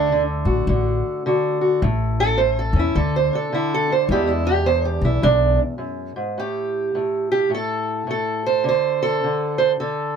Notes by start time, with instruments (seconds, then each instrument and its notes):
Already playing: upright bass D2, steel-string acoustic guitar D3 A3 D4
0.12 steel-string acoustic guitar D3
0.45 upright bass A1, steel-string acoustic guitar F#4
0.67 upright bass A1, steel-string acoustic guitar D3
1.26 steel-string acoustic guitar D3 F#4
1.61 steel-string acoustic guitar F#4
1.82 upright bass A1, steel-string acoustic guitar A2
2.20 steel-string acoustic guitar C#4 A4
2.38 steel-string acoustic guitar A2 C5
2.59 steel-string acoustic guitar A4
2.73 upright bass E2, steel-string acoustic guitar C#4
2.79 steel-string acoustic guitar E4
2.95 upright bass D2, steel-string acoustic guitar D3 A4
3.16 steel-string acoustic guitar C5
3.33 steel-string acoustic guitar D4 A4
3.53 steel-string acoustic guitar D3 E4
3.74 steel-string acoustic guitar A4
3.90 steel-string acoustic guitar D4 C5
4.09 upright bass E2, steel-string acoustic guitar E2 G#3 D4 E4 G4
4.27 steel-string acoustic guitar E4
4.45 steel-string acoustic guitar D4 G4
4.66 steel-string acoustic guitar E2 C5
4.85 steel-string acoustic guitar G4
5.01 upright bass B1, steel-string acoustic guitar D4 E4
5.22 upright bass B1, steel-string acoustic guitar E2 D4
5.78 steel-string acoustic guitar F#2
6.16 steel-string acoustic guitar G#2
6.38 steel-string acoustic guitar A2 G4
6.95 steel-string acoustic guitar A2
7.32 steel-string acoustic guitar G4
7.50 steel-string acoustic guitar A2
7.55 steel-string acoustic guitar A4
8.07 steel-string acoustic guitar A2 A4
8.46 steel-string acoustic guitar C5
8.64 steel-string acoustic guitar D3
8.69 steel-string acoustic guitar C5
9.03 steel-string acoustic guitar A4
9.24 steel-string acoustic guitar D3
9.58 steel-string acoustic guitar C5
9.80 steel-string acoustic guitar D3 A4